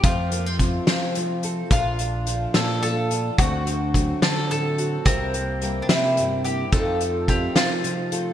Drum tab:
HH |xxxxxx|xxxxxx|xxxxxx|xxxxxx|
SD |---o--|---o--|---o--|---o--|
BD |o-o---|o-----|o-o---|o-----|

HH |xxxxxx|
SD |---o--|
BD |o-o---|